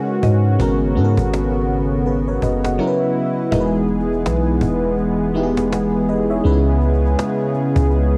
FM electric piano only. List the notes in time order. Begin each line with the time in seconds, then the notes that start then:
Already playing: G#3 D#4 E4 F#4 B4
0.59 G#3 B3 C#4 F#4 A#4
0.95 G#3 B3 C#4 F#4 A4
1.04 A#4
2.06 G#4 B4
2.28 A#4 C#5
2.43 B4 D#5
2.64 D#5 F#5
2.78 F#3 B3 C#4 E4 A#4
2.87 B4
3.51 G#3 B3 D#4 E4 A#4
3.60 B4
5.34 G#3 B3 D#4 E4 G4
5.43 G#4
5.72 G#4 B4
6.09 B4 D#5
6.30 C#5 E5
6.44 G#3 B3 C#4 D#4 B4
6.52 E4